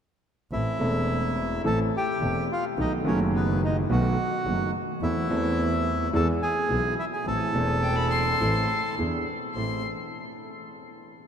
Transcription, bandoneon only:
0, 0, Header, 1, 2, 480
1, 0, Start_track
1, 0, Key_signature, 0, "minor"
1, 0, Tempo, 569801
1, 435, Time_signature, 4, 2, 24, 8
1, 1871, Tempo, 560224
1, 6191, Tempo, 570885
1, 9563, End_track
2, 0, Start_track
2, 0, Title_t, "Bandoneon"
2, 0, Program_c, 0, 23
2, 442, Note_on_c, 0, 76, 75
2, 443, Note_on_c, 0, 64, 64
2, 1365, Note_off_c, 0, 64, 0
2, 1365, Note_off_c, 0, 76, 0
2, 1396, Note_on_c, 0, 69, 68
2, 1408, Note_on_c, 0, 81, 92
2, 1503, Note_off_c, 0, 69, 0
2, 1512, Note_off_c, 0, 81, 0
2, 1651, Note_on_c, 0, 67, 68
2, 1663, Note_on_c, 0, 79, 82
2, 2087, Note_off_c, 0, 67, 0
2, 2094, Note_off_c, 0, 79, 0
2, 2124, Note_on_c, 0, 65, 65
2, 2135, Note_on_c, 0, 77, 82
2, 2229, Note_off_c, 0, 65, 0
2, 2238, Note_off_c, 0, 77, 0
2, 2367, Note_on_c, 0, 63, 59
2, 2376, Note_on_c, 0, 75, 74
2, 2472, Note_off_c, 0, 63, 0
2, 2479, Note_off_c, 0, 75, 0
2, 2596, Note_on_c, 0, 61, 53
2, 2605, Note_on_c, 0, 73, 68
2, 2704, Note_off_c, 0, 61, 0
2, 2711, Note_off_c, 0, 73, 0
2, 2836, Note_on_c, 0, 59, 56
2, 2847, Note_on_c, 0, 71, 68
2, 3058, Note_off_c, 0, 59, 0
2, 3064, Note_off_c, 0, 71, 0
2, 3087, Note_on_c, 0, 63, 50
2, 3097, Note_on_c, 0, 75, 63
2, 3192, Note_off_c, 0, 63, 0
2, 3200, Note_off_c, 0, 75, 0
2, 3319, Note_on_c, 0, 66, 63
2, 3330, Note_on_c, 0, 78, 76
2, 3999, Note_off_c, 0, 66, 0
2, 4005, Note_off_c, 0, 78, 0
2, 4278, Note_on_c, 0, 76, 83
2, 4281, Note_on_c, 0, 64, 65
2, 5197, Note_off_c, 0, 76, 0
2, 5199, Note_off_c, 0, 64, 0
2, 5241, Note_on_c, 0, 81, 97
2, 5242, Note_on_c, 0, 69, 72
2, 5346, Note_off_c, 0, 81, 0
2, 5347, Note_off_c, 0, 69, 0
2, 5472, Note_on_c, 0, 80, 83
2, 5480, Note_on_c, 0, 68, 64
2, 5917, Note_off_c, 0, 80, 0
2, 5921, Note_off_c, 0, 68, 0
2, 5958, Note_on_c, 0, 76, 80
2, 5959, Note_on_c, 0, 64, 64
2, 6010, Note_off_c, 0, 64, 0
2, 6010, Note_off_c, 0, 76, 0
2, 6080, Note_on_c, 0, 80, 68
2, 6090, Note_on_c, 0, 68, 48
2, 6187, Note_off_c, 0, 80, 0
2, 6192, Note_off_c, 0, 68, 0
2, 6201, Note_on_c, 0, 69, 71
2, 6202, Note_on_c, 0, 81, 88
2, 7609, Note_off_c, 0, 69, 0
2, 7610, Note_off_c, 0, 81, 0
2, 9563, End_track
0, 0, End_of_file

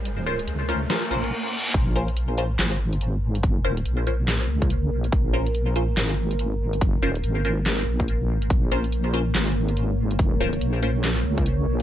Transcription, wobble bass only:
0, 0, Header, 1, 2, 480
1, 0, Start_track
1, 0, Key_signature, -5, "minor"
1, 0, Tempo, 422535
1, 60, Time_signature, 4, 2, 24, 8
1, 13433, End_track
2, 0, Start_track
2, 0, Title_t, "Wobble bass"
2, 0, Program_c, 0, 39
2, 0, Note_on_c, 0, 34, 93
2, 525, Note_off_c, 0, 34, 0
2, 539, Note_on_c, 0, 37, 103
2, 1005, Note_off_c, 0, 37, 0
2, 1260, Note_on_c, 0, 34, 94
2, 1500, Note_off_c, 0, 34, 0
2, 1980, Note_on_c, 0, 34, 96
2, 2925, Note_off_c, 0, 34, 0
2, 2941, Note_on_c, 0, 32, 96
2, 4366, Note_off_c, 0, 32, 0
2, 4381, Note_on_c, 0, 34, 96
2, 5085, Note_off_c, 0, 34, 0
2, 5101, Note_on_c, 0, 37, 99
2, 5565, Note_off_c, 0, 37, 0
2, 5580, Note_on_c, 0, 34, 100
2, 5805, Note_off_c, 0, 34, 0
2, 5821, Note_on_c, 0, 34, 92
2, 6765, Note_off_c, 0, 34, 0
2, 6780, Note_on_c, 0, 32, 99
2, 8205, Note_off_c, 0, 32, 0
2, 8219, Note_on_c, 0, 32, 101
2, 8924, Note_off_c, 0, 32, 0
2, 8940, Note_on_c, 0, 34, 91
2, 9440, Note_off_c, 0, 34, 0
2, 9440, Note_on_c, 0, 33, 91
2, 9645, Note_off_c, 0, 33, 0
2, 9660, Note_on_c, 0, 34, 94
2, 10605, Note_off_c, 0, 34, 0
2, 10616, Note_on_c, 0, 32, 97
2, 12043, Note_off_c, 0, 32, 0
2, 12057, Note_on_c, 0, 34, 99
2, 12763, Note_off_c, 0, 34, 0
2, 12778, Note_on_c, 0, 37, 96
2, 13244, Note_off_c, 0, 37, 0
2, 13258, Note_on_c, 0, 34, 101
2, 13433, Note_off_c, 0, 34, 0
2, 13433, End_track
0, 0, End_of_file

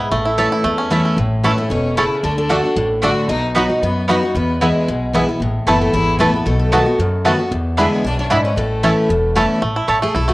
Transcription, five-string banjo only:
0, 0, Header, 1, 2, 480
1, 0, Start_track
1, 0, Key_signature, 3, "major"
1, 0, Tempo, 263852
1, 216, Time_signature, 4, 2, 24, 8
1, 18803, End_track
2, 0, Start_track
2, 0, Title_t, "Five-string banjo"
2, 0, Program_c, 0, 105
2, 0, Note_on_c, 0, 59, 55
2, 0, Note_on_c, 0, 64, 60
2, 202, Note_off_c, 0, 59, 0
2, 210, Note_on_c, 0, 57, 72
2, 455, Note_off_c, 0, 64, 0
2, 462, Note_on_c, 0, 64, 59
2, 693, Note_on_c, 0, 69, 53
2, 897, Note_off_c, 0, 57, 0
2, 926, Note_off_c, 0, 64, 0
2, 948, Note_on_c, 0, 64, 67
2, 1165, Note_on_c, 0, 57, 67
2, 1379, Note_off_c, 0, 69, 0
2, 1420, Note_on_c, 0, 61, 61
2, 1612, Note_off_c, 0, 64, 0
2, 1650, Note_on_c, 0, 64, 56
2, 1855, Note_off_c, 0, 57, 0
2, 1912, Note_on_c, 0, 57, 49
2, 2089, Note_off_c, 0, 61, 0
2, 2136, Note_off_c, 0, 64, 0
2, 2140, Note_off_c, 0, 57, 0
2, 2623, Note_on_c, 0, 57, 53
2, 2631, Note_on_c, 0, 61, 60
2, 2641, Note_on_c, 0, 64, 61
2, 2733, Note_off_c, 0, 57, 0
2, 2738, Note_off_c, 0, 61, 0
2, 2740, Note_off_c, 0, 64, 0
2, 3595, Note_on_c, 0, 57, 65
2, 3600, Note_on_c, 0, 61, 66
2, 3607, Note_on_c, 0, 64, 67
2, 3701, Note_off_c, 0, 57, 0
2, 3702, Note_off_c, 0, 61, 0
2, 3704, Note_off_c, 0, 64, 0
2, 4549, Note_on_c, 0, 57, 60
2, 4559, Note_on_c, 0, 66, 61
2, 4563, Note_on_c, 0, 62, 61
2, 4659, Note_off_c, 0, 57, 0
2, 4662, Note_off_c, 0, 62, 0
2, 4663, Note_off_c, 0, 66, 0
2, 5519, Note_on_c, 0, 57, 66
2, 5525, Note_on_c, 0, 62, 61
2, 5534, Note_on_c, 0, 66, 63
2, 5624, Note_off_c, 0, 57, 0
2, 5628, Note_off_c, 0, 62, 0
2, 5630, Note_off_c, 0, 66, 0
2, 6480, Note_on_c, 0, 59, 57
2, 6484, Note_on_c, 0, 63, 67
2, 6494, Note_on_c, 0, 66, 62
2, 6586, Note_off_c, 0, 63, 0
2, 6587, Note_off_c, 0, 59, 0
2, 6589, Note_off_c, 0, 66, 0
2, 7442, Note_on_c, 0, 59, 66
2, 7450, Note_on_c, 0, 63, 60
2, 7455, Note_on_c, 0, 66, 57
2, 7546, Note_off_c, 0, 59, 0
2, 7551, Note_off_c, 0, 63, 0
2, 7552, Note_off_c, 0, 66, 0
2, 8402, Note_on_c, 0, 59, 62
2, 8409, Note_on_c, 0, 64, 59
2, 8445, Note_off_c, 0, 64, 0
2, 8507, Note_off_c, 0, 59, 0
2, 9363, Note_on_c, 0, 59, 65
2, 9373, Note_on_c, 0, 64, 60
2, 9409, Note_off_c, 0, 64, 0
2, 9468, Note_off_c, 0, 59, 0
2, 10329, Note_on_c, 0, 57, 61
2, 10339, Note_on_c, 0, 64, 59
2, 10375, Note_off_c, 0, 64, 0
2, 10431, Note_off_c, 0, 57, 0
2, 11282, Note_on_c, 0, 57, 68
2, 11291, Note_on_c, 0, 64, 60
2, 11327, Note_off_c, 0, 64, 0
2, 11387, Note_off_c, 0, 57, 0
2, 12232, Note_on_c, 0, 57, 58
2, 12239, Note_on_c, 0, 63, 62
2, 12242, Note_on_c, 0, 66, 66
2, 12341, Note_off_c, 0, 57, 0
2, 12345, Note_off_c, 0, 63, 0
2, 12345, Note_off_c, 0, 66, 0
2, 13190, Note_on_c, 0, 57, 72
2, 13204, Note_on_c, 0, 66, 67
2, 13205, Note_on_c, 0, 63, 63
2, 13301, Note_off_c, 0, 57, 0
2, 13304, Note_off_c, 0, 63, 0
2, 13306, Note_off_c, 0, 66, 0
2, 14152, Note_on_c, 0, 59, 62
2, 14160, Note_on_c, 0, 62, 54
2, 14164, Note_on_c, 0, 64, 60
2, 14260, Note_off_c, 0, 59, 0
2, 14263, Note_off_c, 0, 62, 0
2, 14264, Note_off_c, 0, 64, 0
2, 15110, Note_on_c, 0, 59, 62
2, 15118, Note_on_c, 0, 62, 58
2, 15131, Note_on_c, 0, 64, 68
2, 15218, Note_off_c, 0, 59, 0
2, 15223, Note_off_c, 0, 62, 0
2, 15225, Note_off_c, 0, 64, 0
2, 16074, Note_on_c, 0, 57, 61
2, 16085, Note_on_c, 0, 64, 59
2, 16086, Note_on_c, 0, 61, 61
2, 16180, Note_off_c, 0, 57, 0
2, 16183, Note_off_c, 0, 61, 0
2, 16185, Note_off_c, 0, 64, 0
2, 17032, Note_on_c, 0, 57, 65
2, 17046, Note_on_c, 0, 61, 65
2, 17048, Note_on_c, 0, 64, 69
2, 17139, Note_off_c, 0, 57, 0
2, 17142, Note_off_c, 0, 61, 0
2, 17145, Note_off_c, 0, 64, 0
2, 17501, Note_on_c, 0, 57, 71
2, 17759, Note_on_c, 0, 64, 64
2, 17977, Note_on_c, 0, 69, 51
2, 18224, Note_off_c, 0, 57, 0
2, 18231, Note_on_c, 0, 57, 73
2, 18417, Note_off_c, 0, 64, 0
2, 18457, Note_on_c, 0, 64, 66
2, 18691, Note_off_c, 0, 57, 0
2, 18699, Note_on_c, 0, 57, 58
2, 18803, Note_off_c, 0, 57, 0
2, 18803, Note_off_c, 0, 64, 0
2, 18803, Note_off_c, 0, 69, 0
2, 18803, End_track
0, 0, End_of_file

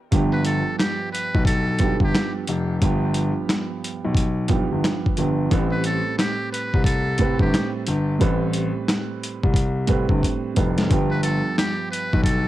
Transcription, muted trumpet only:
0, 0, Header, 1, 2, 480
1, 0, Start_track
1, 0, Tempo, 674157
1, 85, Time_signature, 4, 2, 24, 8
1, 8885, End_track
2, 0, Start_track
2, 0, Title_t, "Muted trumpet"
2, 0, Program_c, 0, 59
2, 233, Note_on_c, 0, 71, 74
2, 314, Note_off_c, 0, 71, 0
2, 329, Note_on_c, 0, 69, 90
2, 543, Note_off_c, 0, 69, 0
2, 560, Note_on_c, 0, 67, 83
2, 778, Note_off_c, 0, 67, 0
2, 800, Note_on_c, 0, 71, 79
2, 1018, Note_off_c, 0, 71, 0
2, 1039, Note_on_c, 0, 69, 89
2, 1409, Note_off_c, 0, 69, 0
2, 1449, Note_on_c, 0, 67, 86
2, 1659, Note_off_c, 0, 67, 0
2, 4069, Note_on_c, 0, 71, 70
2, 4152, Note_off_c, 0, 71, 0
2, 4174, Note_on_c, 0, 69, 82
2, 4386, Note_off_c, 0, 69, 0
2, 4404, Note_on_c, 0, 67, 89
2, 4621, Note_off_c, 0, 67, 0
2, 4646, Note_on_c, 0, 71, 81
2, 4862, Note_off_c, 0, 71, 0
2, 4881, Note_on_c, 0, 69, 89
2, 5250, Note_off_c, 0, 69, 0
2, 5275, Note_on_c, 0, 67, 79
2, 5491, Note_off_c, 0, 67, 0
2, 7910, Note_on_c, 0, 71, 71
2, 7993, Note_off_c, 0, 71, 0
2, 7998, Note_on_c, 0, 69, 86
2, 8217, Note_off_c, 0, 69, 0
2, 8246, Note_on_c, 0, 67, 91
2, 8462, Note_off_c, 0, 67, 0
2, 8479, Note_on_c, 0, 71, 83
2, 8698, Note_off_c, 0, 71, 0
2, 8717, Note_on_c, 0, 69, 88
2, 8885, Note_off_c, 0, 69, 0
2, 8885, End_track
0, 0, End_of_file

